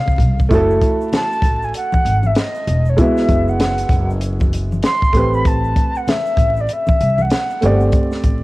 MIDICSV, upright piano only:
0, 0, Header, 1, 2, 480
1, 0, Start_track
1, 0, Tempo, 618557
1, 396, Time_signature, 4, 2, 24, 8
1, 6546, End_track
2, 0, Start_track
2, 0, Title_t, "Upright piano"
2, 0, Program_c, 0, 0
2, 0, Note_on_c, 0, 58, 67
2, 0, Note_on_c, 0, 60, 64
2, 0, Note_on_c, 0, 63, 60
2, 0, Note_on_c, 0, 72, 75
2, 354, Note_off_c, 0, 58, 0
2, 361, Note_off_c, 0, 60, 0
2, 366, Note_off_c, 0, 63, 0
2, 371, Note_off_c, 0, 72, 0
2, 379, Note_on_c, 0, 57, 84
2, 393, Note_on_c, 0, 64, 77
2, 403, Note_on_c, 0, 66, 69
2, 414, Note_on_c, 0, 69, 91
2, 2276, Note_off_c, 0, 57, 0
2, 2283, Note_off_c, 0, 64, 0
2, 2288, Note_off_c, 0, 66, 0
2, 2294, Note_off_c, 0, 69, 0
2, 2301, Note_on_c, 0, 56, 75
2, 2312, Note_on_c, 0, 64, 67
2, 2325, Note_on_c, 0, 66, 61
2, 2334, Note_on_c, 0, 59, 73
2, 3957, Note_off_c, 0, 56, 0
2, 3963, Note_off_c, 0, 64, 0
2, 3969, Note_off_c, 0, 66, 0
2, 3973, Note_off_c, 0, 59, 0
2, 3979, Note_on_c, 0, 57, 61
2, 3989, Note_on_c, 0, 60, 58
2, 4002, Note_on_c, 0, 67, 60
2, 4012, Note_on_c, 0, 71, 72
2, 5876, Note_off_c, 0, 57, 0
2, 5881, Note_off_c, 0, 60, 0
2, 5888, Note_off_c, 0, 67, 0
2, 5893, Note_off_c, 0, 71, 0
2, 5904, Note_on_c, 0, 57, 64
2, 5915, Note_on_c, 0, 60, 61
2, 5926, Note_on_c, 0, 67, 56
2, 5939, Note_on_c, 0, 74, 72
2, 6546, Note_off_c, 0, 57, 0
2, 6546, Note_off_c, 0, 60, 0
2, 6546, Note_off_c, 0, 67, 0
2, 6546, Note_off_c, 0, 74, 0
2, 6546, End_track
0, 0, End_of_file